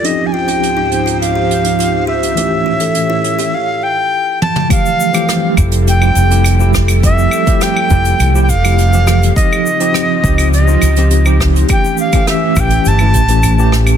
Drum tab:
HH |x--xx-xxx-xxx--x|x--xx-xx--------|x--xx-xxx-xxx--x|x--xx-xxx-xxx--x|
SH |----------------|----------------|xxxxx-xxxxxxxxxx|xxxxx-xxxxxxxxxx|
CL |----------------|----------------|x--x--x--x--x--x|--x--x--x--x--x-|
SD |----------------|----------------|----r---------r-|----r---------r-|
T1 |----------------|--------------o-|----------------|----------------|
T2 |----------------|---------------o|----------------|----------------|
BD |----------------|----------------|o-----o-------o-|o--o--o---o-----|

HH |x--xx-xxx-xxx--x|x--xx-xxx-xxx--x|
SH |xxxxx-xxxxxxxxxx|xxxxx-xxxxxxxxxx|
CL |-x--x--x--x--x--|x--x--x--x--x--x|
SD |----r---------r-|----r---------r-|
T1 |----------------|----------------|
T2 |----------------|----------------|
BD |o-----o-------o-|o--o--o---o-----|